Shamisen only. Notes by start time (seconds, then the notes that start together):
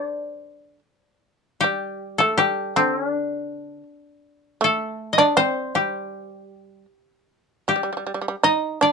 Already playing: D4
1.64 G3
2.20 A3
2.39 G3
2.76 D3
4.61 A3
5.18 D4
5.37 C4
5.75 G3
7.68 G3
7.76 G3
7.83 G3
7.93 G3
7.97 G3
8.07 G3
8.14 G3
8.21 G3
8.28 G3
8.43 D#4
8.81 D4